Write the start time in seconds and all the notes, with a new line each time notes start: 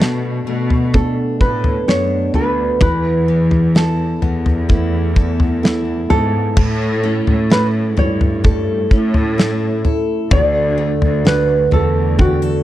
Already playing: B2 A3 A4
0.00 D4, snare
0.47 B2 A3
0.70 floor tom
0.94 A3 B3 D4 A4, kick, floor tom
1.41 A2 A4 B4, kick
1.64 floor tom
1.87 F#2 A3 B3 D4 C#5, snare
2.34 D2 A3 B4, floor tom
2.81 E2 E3 B4, kick, floor tom
3.28 B3
3.51 floor tom
3.75 E4 A4, snare
4.22 E2 B3, floor tom
4.46 floor tom
4.69 A3 B3 E4, kick, floor tom
5.16 A4, kick
5.40 floor tom
5.63 B3 E4 A4, snare
6.10 G#2 B3 A4, floor tom
6.57 A2 A3, kick, floor tom, crash
7.03 C#4 E4
7.27 A2, floor tom
7.50 A3 E4 B4, snare
7.97 G2 C#4 E4 C#5, floor tom
8.21 floor tom
8.44 A3 A4, kick, floor tom
8.91 A2 C#4 E4, kick
9.14 floor tom
9.38 A3 E4, snare
9.84 E4 A4, floor tom
10.31 D2 D3 D5, kick, floor tom
10.78 A3
11.02 D2, floor tom
11.25 D3 F#4 B4, snare
11.71 E2 A3 A4, floor tom
12.18 D3 F#4 G4, kick, floor tom
12.42 A4